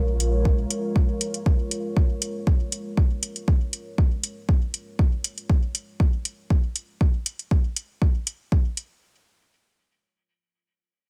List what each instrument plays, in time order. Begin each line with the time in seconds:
Already playing: analog synth bass A#1, synth texture F3 F4, ambient pad G#3 F4 A#4 C#5
0.20 closed hi-hat
0.45 kick
0.70 closed hi-hat
0.96 kick
1.21 closed hi-hat
1.34 closed hi-hat
1.46 kick
1.71 closed hi-hat
1.97 kick
2.22 closed hi-hat
2.47 kick
2.72 closed hi-hat
2.97 kick
3.23 closed hi-hat
3.36 closed hi-hat
3.48 kick
3.73 closed hi-hat
3.98 kick
4.24 closed hi-hat
4.49 kick
4.74 closed hi-hat
4.99 kick
5.24 closed hi-hat
5.38 closed hi-hat
5.50 kick
5.75 closed hi-hat
6.00 kick
6.25 closed hi-hat
6.50 kick
6.76 closed hi-hat
7.01 kick
7.26 closed hi-hat
7.39 closed hi-hat
7.51 kick
7.76 closed hi-hat
8.02 kick
8.27 closed hi-hat
8.52 kick
8.77 closed hi-hat